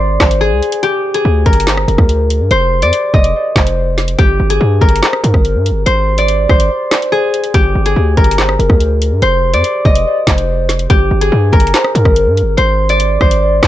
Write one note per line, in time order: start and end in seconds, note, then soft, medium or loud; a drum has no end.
0.00 0.18 G#1 loud
0.00 0.22 A#4 medium
0.00 1.76 C5 medium
0.00 0.19 D5 medium
0.00 1.32 D5 medium
0.20 0.53 G#1 loud
0.20 0.79 C5 medium
0.20 kick loud
0.20 cross-stick loud
0.20 snare loud
0.20 clap medium
0.31 closed hi-hat medium
0.41 0.89 G#4 loud
0.52 0.62 C2 loud
0.63 closed hi-hat medium
0.72 closed hi-hat medium
0.83 1.20 G4 loud
0.83 closed hi-hat medium
1.14 3.42 G#4 medium
1.14 closed hi-hat medium
1.25 1.45 D2 loud
1.46 1.86 G1 loud
1.46 3.58 A#4 medium
1.46 kick medium
1.46 closed hi-hat soft
1.53 closed hi-hat medium
1.60 closed hi-hat medium
1.67 1.87 C5 medium
1.67 snare loud
1.67 clap medium
1.77 cross-stick loud
1.88 1.98 F1 loud
1.88 2.47 A#4 medium
1.88 closed hi-hat medium
1.98 2.42 D2 loud
1.98 kick medium
1.98 cross-stick medium
2.09 closed hi-hat medium
2.30 closed hi-hat medium
2.40 2.50 G2 loud
2.51 2.84 F1 loud
2.51 4.49 C5 loud
2.51 closed hi-hat medium
2.82 2.92 F2 loud
2.82 3.20 D5 medium
2.82 closed hi-hat medium
2.93 closed hi-hat medium
3.14 3.34 F1 loud
3.14 4.92 D#5 medium
3.14 kick medium
3.24 closed hi-hat medium
3.35 3.55 D5 medium
3.56 4.16 F1 loud
3.56 4.15 C5 medium
3.56 kick loud
3.56 snare loud
3.56 clap loud
3.67 closed hi-hat medium
3.98 snare medium
3.98 closed hi-hat medium
4.08 closed hi-hat medium
4.18 4.39 G1 loud
4.18 4.56 G4 loud
4.18 kick loud
4.18 closed hi-hat medium
4.40 4.60 G1 loud
4.50 6.77 G#4 medium
4.50 closed hi-hat medium
4.61 4.81 G2 loud
4.81 5.02 G1 loud
4.81 6.93 A#4 medium
4.81 kick medium
4.81 closed hi-hat soft
4.89 closed hi-hat medium
4.96 closed hi-hat medium
5.02 5.22 C5 medium
5.02 snare loud
5.02 clap medium
5.13 cross-stick loud
5.24 5.33 G2 loud
5.24 5.83 A#4 loud
5.24 closed hi-hat medium
5.34 5.57 G1 loud
5.34 kick loud
5.34 cross-stick medium
5.45 closed hi-hat medium
5.55 5.72 G2 loud
5.66 closed hi-hat medium
5.71 5.86 G1 loud
5.86 6.47 G#1 loud
5.86 6.49 C5 loud
5.86 closed hi-hat medium
6.18 8.03 D5 medium
6.18 closed hi-hat medium
6.28 closed hi-hat medium
6.49 6.70 G#1 loud
6.49 8.48 C5 medium
6.49 kick loud
6.49 cross-stick medium
6.60 closed hi-hat medium
6.71 6.90 D5 medium
6.91 7.51 C5 medium
6.91 cross-stick loud
6.91 snare loud
6.91 clap medium
7.02 closed hi-hat medium
7.12 7.60 G#4 loud
7.34 closed hi-hat medium
7.44 closed hi-hat medium
7.54 7.75 G1 loud
7.54 7.92 G4 loud
7.54 kick loud
7.54 closed hi-hat medium
7.75 7.95 G1 loud
7.86 10.13 G#4 medium
7.86 closed hi-hat medium
7.96 8.16 D2 loud
8.17 8.58 G1 loud
8.17 10.29 A#4 medium
8.17 kick medium
8.17 closed hi-hat soft
8.24 closed hi-hat medium
8.31 closed hi-hat medium
8.38 8.58 C5 medium
8.38 snare loud
8.38 clap medium
8.49 cross-stick loud
8.59 8.69 F1 loud
8.59 9.19 A#4 medium
8.59 closed hi-hat medium
8.70 9.13 D2 loud
8.70 kick medium
8.70 cross-stick medium
8.80 closed hi-hat medium
9.02 closed hi-hat medium
9.12 9.22 G2 loud
9.22 9.55 F1 loud
9.22 11.20 C5 loud
9.22 closed hi-hat medium
9.54 9.64 F2 loud
9.54 9.91 D5 medium
9.54 closed hi-hat medium
9.64 closed hi-hat medium
9.85 10.05 F1 loud
9.85 11.64 D#5 medium
9.85 kick loud
9.95 closed hi-hat medium
10.06 10.26 D5 medium
10.27 10.88 F1 loud
10.27 10.86 C5 medium
10.27 kick loud
10.27 snare loud
10.27 clap loud
10.38 closed hi-hat medium
10.69 snare medium
10.69 closed hi-hat medium
10.79 closed hi-hat medium
10.90 11.10 G1 loud
10.90 11.27 G4 loud
10.90 kick loud
10.90 closed hi-hat medium
11.11 11.31 G1 loud
11.21 13.49 G#4 medium
11.21 closed hi-hat medium
11.32 11.52 G2 loud
11.53 11.73 G1 loud
11.53 13.65 A#4 medium
11.53 kick loud
11.53 closed hi-hat soft
11.60 closed hi-hat medium
11.67 closed hi-hat medium
11.74 11.94 C5 medium
11.74 snare loud
11.74 clap medium
11.84 cross-stick loud
11.95 12.05 G2 loud
11.95 12.54 A#4 loud
11.95 closed hi-hat medium
12.05 12.28 G1 loud
12.05 kick medium
12.05 cross-stick medium
12.16 closed hi-hat medium
12.26 12.44 G2 loud
12.37 closed hi-hat medium
12.42 12.57 G1 loud
12.57 13.18 G#1 loud
12.57 13.20 C5 loud
12.57 closed hi-hat medium
12.89 13.68 D5 medium
12.89 closed hi-hat medium
13.00 closed hi-hat medium
13.21 13.61 G#1 loud
13.21 13.68 C5 medium
13.21 kick loud
13.21 cross-stick medium
13.31 closed hi-hat medium
13.42 13.62 D5 medium
13.63 13.68 G#1 loud
13.63 13.68 C5 medium
13.63 kick loud
13.63 cross-stick loud
13.63 snare loud
13.63 clap medium